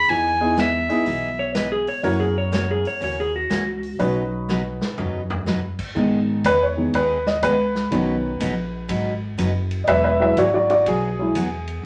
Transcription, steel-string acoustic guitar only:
0.09 0.31 E3 medium
0.09 0.31 B3 medium
0.09 0.31 D#4 medium
0.09 0.31 G#4 medium
0.57 0.69 E3 medium
0.57 0.69 B3 medium
0.57 0.69 D#4 medium
0.57 0.69 G#4 medium
1.06 1.28 E3 medium
1.06 1.28 B3 medium
1.06 1.29 D#4 medium
1.06 1.29 G#4 medium
1.55 1.67 E3 medium
1.55 1.67 B3 medium
1.55 1.67 D#4 medium
1.55 1.67 G#4 medium
2.04 2.26 C#3 medium
2.04 2.26 E3 medium
2.04 2.26 A#3 medium
2.04 2.27 C#4 medium
2.04 2.27 F#4 medium
2.52 2.64 C#3 medium
2.52 2.64 E3 medium
2.52 2.64 A#3 medium
2.52 2.64 C#4 medium
2.52 2.65 F#4 medium
3.00 3.23 C#3 medium
3.00 3.24 E3 medium
3.00 3.24 A#3 medium
3.00 3.24 C#4 medium
3.00 3.24 F#4 medium
3.50 3.62 C#3 medium
3.50 3.62 E3 medium
3.50 3.63 A#3 medium
3.50 3.63 C#4 medium
3.50 3.62 F#4 medium
3.99 4.22 B2 medium
3.99 4.22 C#3 medium
3.99 4.22 F#3 medium
3.99 4.22 B3 medium
3.99 4.22 D#4 medium
3.99 4.22 B4 medium
4.49 4.61 B2 medium
4.49 4.61 C#3 medium
4.49 4.61 F#3 medium
4.49 4.61 B3 medium
4.49 4.61 D#4 medium
4.49 4.61 B4 medium
4.98 5.20 B2 medium
4.98 5.20 C#3 medium
4.98 5.20 F#3 medium
4.98 5.21 B3 medium
4.98 5.21 D#4 medium
4.98 5.21 B4 medium
5.46 5.58 B2 medium
5.46 5.59 C#3 medium
5.46 5.59 F#3 medium
5.46 5.59 B3 medium
5.46 5.59 D#4 medium
5.46 5.59 B4 medium
5.96 6.18 D#3 medium
5.96 6.18 G#3 medium
5.96 6.18 B3 medium
5.96 6.19 D#4 medium
5.96 6.19 G#4 medium
6.44 6.56 D#3 medium
6.44 6.57 G#3 medium
6.44 6.57 B3 medium
6.44 6.57 D#4 medium
6.44 6.57 G#4 medium
6.94 7.16 D#3 medium
6.94 7.16 G#3 medium
6.94 7.16 B3 medium
6.94 7.17 D#4 medium
6.94 7.16 G#4 medium
7.43 7.55 D#3 medium
7.43 7.55 G#3 medium
7.43 7.55 B3 medium
7.43 7.55 D#4 medium
7.43 7.55 G#4 medium
7.92 8.14 B2 medium
7.92 8.14 C#3 medium
7.92 8.14 F#3 medium
7.92 8.15 B3 medium
7.92 8.15 D#4 medium
7.92 8.15 B4 medium
8.40 8.52 B2 medium
8.40 8.53 C#3 medium
8.40 8.53 F#3 medium
8.40 8.53 B3 medium
8.40 8.53 D#4 medium
8.40 8.53 B4 medium
8.88 9.12 B2 medium
8.88 9.12 C#3 medium
8.88 9.12 F#3 medium
8.88 9.12 B3 medium
8.88 9.12 D#4 medium
8.88 9.12 B4 medium
9.38 9.50 B2 medium
9.38 9.50 C#3 medium
9.38 9.50 F#3 medium
9.38 9.50 B3 medium
9.38 9.51 D#4 medium
9.38 9.51 B4 medium
9.87 10.10 E3 medium
9.87 10.10 F#3 medium
9.87 10.10 B3 medium
9.87 10.10 F#4 medium
9.87 10.11 G#4 medium
10.37 10.49 E3 medium
10.37 10.49 F#3 medium
10.37 10.49 B3 medium
10.37 10.49 F#4 medium
10.37 10.50 G#4 medium
10.86 11.09 E3 medium
10.86 11.09 F#3 medium
10.86 11.09 B3 medium
10.86 11.09 F#4 medium
10.86 11.09 G#4 medium
11.35 11.47 E3 medium
11.35 11.47 F#3 medium
11.35 11.47 B3 medium
11.35 11.48 F#4 medium
11.35 11.48 G#4 medium

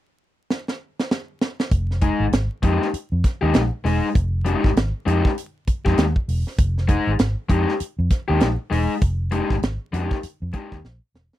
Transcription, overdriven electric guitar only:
2.02 2.24 G#3 medium
2.02 2.24 D#4 medium
2.02 2.25 G#4 medium
2.63 2.85 G#3 medium
2.63 2.85 D#4 medium
2.63 2.86 G4 medium
3.41 3.60 G#3 medium
3.41 3.60 D#4 medium
3.41 3.59 G4 medium
3.84 4.06 G#3 medium
3.84 4.07 D#4 medium
3.84 4.07 G#4 medium
4.45 4.68 G#3 medium
4.45 4.68 D#4 medium
4.45 4.69 G4 medium
5.06 5.28 G#3 medium
5.06 5.28 D#4 medium
5.06 5.29 G4 medium
5.85 6.04 G#3 medium
5.85 6.03 D#4 medium
5.85 6.03 G4 medium
6.88 7.10 G#3 medium
6.88 7.11 D#4 medium
6.88 7.11 G#4 loud
7.49 7.71 G#3 medium
7.49 7.72 D#4 medium
7.49 7.72 G4 medium
8.28 8.47 G#3 medium
8.28 8.46 D#4 medium
8.28 8.46 G4 medium
8.70 8.93 G#3 medium
8.70 8.93 D#4 medium
8.70 8.93 G#4 medium
9.31 9.53 G#3 medium
9.31 9.54 D#4 medium
9.31 9.54 G4 medium
9.93 10.15 G#3 medium
9.93 10.15 D#4 medium
9.93 10.16 G4 loud
10.53 10.75 G#3 medium
10.53 10.76 D#4 medium
10.53 10.76 G4 medium

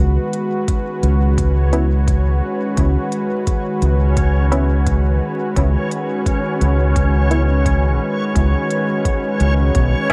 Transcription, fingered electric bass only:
0.00 0.17 C#2 medium
1.03 2.40 C#2 medium
2.77 2.96 C#2 medium
3.82 5.19 C#2 medium
5.56 5.75 C#2 medium
6.61 7.98 C#2 medium
8.35 8.54 C#2 medium
9.40 9.74 C#2 medium
9.75 9.93 B1 medium

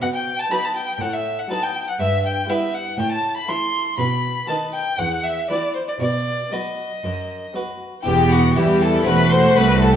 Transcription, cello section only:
0.01 0.40 B2 medium
1.00 1.40 A2 medium
1.99 2.39 G2 medium
2.98 3.38 A2 medium
3.98 4.38 B2 medium
4.98 5.39 E2 medium
6.01 6.42 B2 medium
7.04 7.45 F#2 medium
8.06 8.53 E2 medium
8.57 9.07 E3 medium
9.07 9.56 E2 medium
9.57 9.96 C2 medium

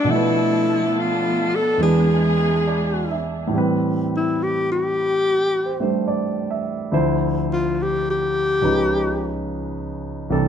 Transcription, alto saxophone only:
0.00 0.12 D4 medium
0.11 1.00 E4 medium
0.99 1.57 F4 medium
1.55 1.82 A4 medium
1.83 3.22 G#4 medium
4.17 4.45 E4 medium
4.43 4.69 G4 medium
4.72 5.97 G4 medium
7.53 7.84 F4 medium
7.82 8.08 G4 medium
8.10 9.36 G4 medium

